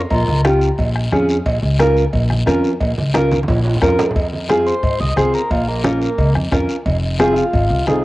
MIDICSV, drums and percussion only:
0, 0, Header, 1, 3, 480
1, 0, Start_track
1, 0, Tempo, 337648
1, 155, Time_signature, 4, 2, 24, 8
1, 11438, End_track
2, 0, Start_track
2, 0, Title_t, "Two-headed folk drums"
2, 156, Note_on_c, 9, 36, 81
2, 298, Note_off_c, 9, 36, 0
2, 637, Note_on_c, 9, 37, 95
2, 779, Note_off_c, 9, 37, 0
2, 1117, Note_on_c, 9, 36, 85
2, 1259, Note_off_c, 9, 36, 0
2, 1359, Note_on_c, 9, 37, 76
2, 1501, Note_off_c, 9, 37, 0
2, 1598, Note_on_c, 9, 37, 76
2, 1740, Note_off_c, 9, 37, 0
2, 2075, Note_on_c, 9, 36, 78
2, 2217, Note_off_c, 9, 36, 0
2, 2551, Note_on_c, 9, 37, 87
2, 2693, Note_off_c, 9, 37, 0
2, 3033, Note_on_c, 9, 36, 75
2, 3176, Note_off_c, 9, 36, 0
2, 3271, Note_on_c, 9, 37, 70
2, 3413, Note_off_c, 9, 37, 0
2, 3513, Note_on_c, 9, 37, 78
2, 3655, Note_off_c, 9, 37, 0
2, 3990, Note_on_c, 9, 36, 75
2, 4132, Note_off_c, 9, 36, 0
2, 4467, Note_on_c, 9, 37, 87
2, 4610, Note_off_c, 9, 37, 0
2, 4950, Note_on_c, 9, 36, 82
2, 5092, Note_off_c, 9, 36, 0
2, 5426, Note_on_c, 9, 37, 82
2, 5428, Note_on_c, 9, 36, 61
2, 5568, Note_off_c, 9, 37, 0
2, 5570, Note_off_c, 9, 36, 0
2, 5909, Note_on_c, 9, 36, 86
2, 6051, Note_off_c, 9, 36, 0
2, 6391, Note_on_c, 9, 37, 78
2, 6533, Note_off_c, 9, 37, 0
2, 6869, Note_on_c, 9, 36, 77
2, 7011, Note_off_c, 9, 36, 0
2, 7350, Note_on_c, 9, 37, 86
2, 7493, Note_off_c, 9, 37, 0
2, 7829, Note_on_c, 9, 36, 81
2, 7971, Note_off_c, 9, 36, 0
2, 8310, Note_on_c, 9, 37, 76
2, 8452, Note_off_c, 9, 37, 0
2, 8787, Note_on_c, 9, 36, 84
2, 8929, Note_off_c, 9, 36, 0
2, 9030, Note_on_c, 9, 37, 76
2, 9172, Note_off_c, 9, 37, 0
2, 9269, Note_on_c, 9, 36, 61
2, 9271, Note_on_c, 9, 37, 76
2, 9411, Note_off_c, 9, 36, 0
2, 9414, Note_off_c, 9, 37, 0
2, 9748, Note_on_c, 9, 36, 74
2, 9890, Note_off_c, 9, 36, 0
2, 10231, Note_on_c, 9, 37, 84
2, 10373, Note_off_c, 9, 37, 0
2, 10709, Note_on_c, 9, 36, 82
2, 10852, Note_off_c, 9, 36, 0
2, 11190, Note_on_c, 9, 37, 70
2, 11332, Note_off_c, 9, 37, 0
2, 11438, End_track
3, 0, Start_track
3, 0, Title_t, "Drums"
3, 149, Note_on_c, 9, 74, 68
3, 152, Note_on_c, 9, 56, 99
3, 158, Note_on_c, 9, 63, 37
3, 292, Note_off_c, 9, 74, 0
3, 294, Note_off_c, 9, 56, 0
3, 301, Note_off_c, 9, 63, 0
3, 398, Note_on_c, 9, 63, 69
3, 398, Note_on_c, 9, 64, 67
3, 541, Note_off_c, 9, 63, 0
3, 541, Note_off_c, 9, 64, 0
3, 635, Note_on_c, 9, 73, 69
3, 639, Note_on_c, 9, 63, 91
3, 777, Note_off_c, 9, 73, 0
3, 781, Note_off_c, 9, 63, 0
3, 871, Note_on_c, 9, 73, 64
3, 1013, Note_off_c, 9, 73, 0
3, 1108, Note_on_c, 9, 74, 76
3, 1118, Note_on_c, 9, 56, 90
3, 1121, Note_on_c, 9, 63, 30
3, 1250, Note_off_c, 9, 74, 0
3, 1260, Note_off_c, 9, 56, 0
3, 1263, Note_off_c, 9, 63, 0
3, 1589, Note_on_c, 9, 73, 71
3, 1601, Note_on_c, 9, 63, 77
3, 1601, Note_on_c, 9, 64, 74
3, 1731, Note_off_c, 9, 73, 0
3, 1743, Note_off_c, 9, 63, 0
3, 1743, Note_off_c, 9, 64, 0
3, 1833, Note_on_c, 9, 73, 85
3, 1975, Note_off_c, 9, 73, 0
3, 2073, Note_on_c, 9, 74, 69
3, 2078, Note_on_c, 9, 56, 114
3, 2081, Note_on_c, 9, 63, 37
3, 2215, Note_off_c, 9, 74, 0
3, 2220, Note_off_c, 9, 56, 0
3, 2223, Note_off_c, 9, 63, 0
3, 2554, Note_on_c, 9, 73, 76
3, 2558, Note_on_c, 9, 63, 95
3, 2697, Note_off_c, 9, 73, 0
3, 2700, Note_off_c, 9, 63, 0
3, 2796, Note_on_c, 9, 73, 61
3, 2938, Note_off_c, 9, 73, 0
3, 3028, Note_on_c, 9, 56, 86
3, 3033, Note_on_c, 9, 74, 72
3, 3041, Note_on_c, 9, 63, 35
3, 3170, Note_off_c, 9, 56, 0
3, 3175, Note_off_c, 9, 74, 0
3, 3183, Note_off_c, 9, 63, 0
3, 3276, Note_on_c, 9, 63, 74
3, 3418, Note_off_c, 9, 63, 0
3, 3514, Note_on_c, 9, 63, 76
3, 3516, Note_on_c, 9, 73, 77
3, 3656, Note_off_c, 9, 63, 0
3, 3658, Note_off_c, 9, 73, 0
3, 3757, Note_on_c, 9, 73, 71
3, 3899, Note_off_c, 9, 73, 0
3, 3987, Note_on_c, 9, 56, 98
3, 3995, Note_on_c, 9, 74, 71
3, 3999, Note_on_c, 9, 63, 39
3, 4129, Note_off_c, 9, 56, 0
3, 4138, Note_off_c, 9, 74, 0
3, 4141, Note_off_c, 9, 63, 0
3, 4237, Note_on_c, 9, 63, 72
3, 4237, Note_on_c, 9, 64, 67
3, 4379, Note_off_c, 9, 63, 0
3, 4379, Note_off_c, 9, 64, 0
3, 4469, Note_on_c, 9, 73, 74
3, 4475, Note_on_c, 9, 63, 107
3, 4611, Note_off_c, 9, 73, 0
3, 4617, Note_off_c, 9, 63, 0
3, 4713, Note_on_c, 9, 73, 66
3, 4715, Note_on_c, 9, 63, 100
3, 4855, Note_off_c, 9, 73, 0
3, 4857, Note_off_c, 9, 63, 0
3, 4879, Note_on_c, 9, 63, 90
3, 4949, Note_on_c, 9, 74, 76
3, 4951, Note_on_c, 9, 56, 88
3, 4951, Note_on_c, 9, 65, 90
3, 5022, Note_off_c, 9, 63, 0
3, 5091, Note_off_c, 9, 74, 0
3, 5093, Note_off_c, 9, 56, 0
3, 5093, Note_off_c, 9, 65, 0
3, 5191, Note_on_c, 9, 65, 91
3, 5333, Note_off_c, 9, 65, 0
3, 5355, Note_on_c, 9, 64, 66
3, 5432, Note_on_c, 9, 73, 81
3, 5497, Note_off_c, 9, 64, 0
3, 5517, Note_on_c, 9, 64, 78
3, 5574, Note_off_c, 9, 73, 0
3, 5660, Note_off_c, 9, 64, 0
3, 5669, Note_on_c, 9, 66, 96
3, 5669, Note_on_c, 9, 73, 75
3, 5673, Note_on_c, 9, 64, 86
3, 5811, Note_off_c, 9, 66, 0
3, 5811, Note_off_c, 9, 73, 0
3, 5815, Note_off_c, 9, 64, 0
3, 5838, Note_on_c, 9, 64, 86
3, 5910, Note_on_c, 9, 74, 65
3, 5912, Note_on_c, 9, 63, 40
3, 5913, Note_on_c, 9, 56, 96
3, 5980, Note_off_c, 9, 64, 0
3, 6052, Note_off_c, 9, 74, 0
3, 6054, Note_off_c, 9, 63, 0
3, 6055, Note_off_c, 9, 56, 0
3, 6152, Note_on_c, 9, 63, 66
3, 6295, Note_off_c, 9, 63, 0
3, 6389, Note_on_c, 9, 73, 72
3, 6390, Note_on_c, 9, 63, 93
3, 6531, Note_off_c, 9, 73, 0
3, 6532, Note_off_c, 9, 63, 0
3, 6634, Note_on_c, 9, 73, 62
3, 6776, Note_off_c, 9, 73, 0
3, 6868, Note_on_c, 9, 74, 71
3, 6873, Note_on_c, 9, 63, 31
3, 6876, Note_on_c, 9, 56, 92
3, 7010, Note_off_c, 9, 74, 0
3, 7016, Note_off_c, 9, 63, 0
3, 7018, Note_off_c, 9, 56, 0
3, 7106, Note_on_c, 9, 63, 70
3, 7248, Note_off_c, 9, 63, 0
3, 7343, Note_on_c, 9, 63, 72
3, 7350, Note_on_c, 9, 73, 72
3, 7485, Note_off_c, 9, 63, 0
3, 7492, Note_off_c, 9, 73, 0
3, 7590, Note_on_c, 9, 73, 79
3, 7732, Note_off_c, 9, 73, 0
3, 7830, Note_on_c, 9, 63, 38
3, 7832, Note_on_c, 9, 56, 106
3, 7834, Note_on_c, 9, 74, 69
3, 7972, Note_off_c, 9, 63, 0
3, 7974, Note_off_c, 9, 56, 0
3, 7976, Note_off_c, 9, 74, 0
3, 8308, Note_on_c, 9, 63, 100
3, 8312, Note_on_c, 9, 73, 72
3, 8450, Note_off_c, 9, 63, 0
3, 8454, Note_off_c, 9, 73, 0
3, 8552, Note_on_c, 9, 73, 64
3, 8694, Note_off_c, 9, 73, 0
3, 8791, Note_on_c, 9, 56, 96
3, 8791, Note_on_c, 9, 63, 30
3, 8792, Note_on_c, 9, 74, 68
3, 8933, Note_off_c, 9, 56, 0
3, 8933, Note_off_c, 9, 63, 0
3, 8934, Note_off_c, 9, 74, 0
3, 9033, Note_on_c, 9, 63, 77
3, 9175, Note_off_c, 9, 63, 0
3, 9271, Note_on_c, 9, 73, 69
3, 9272, Note_on_c, 9, 63, 75
3, 9272, Note_on_c, 9, 64, 70
3, 9414, Note_off_c, 9, 63, 0
3, 9414, Note_off_c, 9, 64, 0
3, 9414, Note_off_c, 9, 73, 0
3, 9508, Note_on_c, 9, 73, 70
3, 9650, Note_off_c, 9, 73, 0
3, 9748, Note_on_c, 9, 74, 73
3, 9749, Note_on_c, 9, 56, 88
3, 9755, Note_on_c, 9, 63, 35
3, 9891, Note_off_c, 9, 56, 0
3, 9891, Note_off_c, 9, 74, 0
3, 9897, Note_off_c, 9, 63, 0
3, 10230, Note_on_c, 9, 63, 97
3, 10230, Note_on_c, 9, 73, 74
3, 10372, Note_off_c, 9, 63, 0
3, 10372, Note_off_c, 9, 73, 0
3, 10465, Note_on_c, 9, 73, 68
3, 10607, Note_off_c, 9, 73, 0
3, 10709, Note_on_c, 9, 74, 73
3, 10710, Note_on_c, 9, 56, 87
3, 10715, Note_on_c, 9, 63, 30
3, 10851, Note_off_c, 9, 74, 0
3, 10852, Note_off_c, 9, 56, 0
3, 10857, Note_off_c, 9, 63, 0
3, 11187, Note_on_c, 9, 73, 73
3, 11192, Note_on_c, 9, 63, 78
3, 11196, Note_on_c, 9, 66, 77
3, 11329, Note_off_c, 9, 73, 0
3, 11334, Note_off_c, 9, 63, 0
3, 11338, Note_off_c, 9, 66, 0
3, 11438, End_track
0, 0, End_of_file